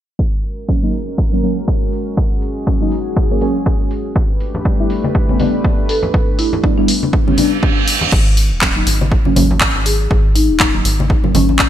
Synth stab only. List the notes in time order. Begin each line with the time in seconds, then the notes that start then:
0.68 F#3 A#3 C#4
0.82 F#3 A#3 D#4
1.32 F#3 A#3 C#4
1.42 F#3 A#3 C#4
2.66 F#3 A#3 C#4
2.81 F#3 A#3 D#4
3.30 F#3 A#3 C#4
3.41 F#3 A#3 C#4
4.65 G3 B3 D4
4.79 G3 B3 E4
5.28 G3 B3 C#4
5.39 G3 B3 D4
6.63 G3 B3 D4
6.77 G3 B3 E4
7.27 G3 B3 C#4
7.37 G3 B3 D4
8.61 F#3 A#3 C#4
8.75 F#3 A#3 D#4
9.25 F#3 A#3 C#4
9.36 F#3 A#3 C#4
10.60 F#3 A#3 C#4
10.74 F#3 A#3 D#4
11.24 F#3 A#3 C#4
11.34 F#3 A#3 C#4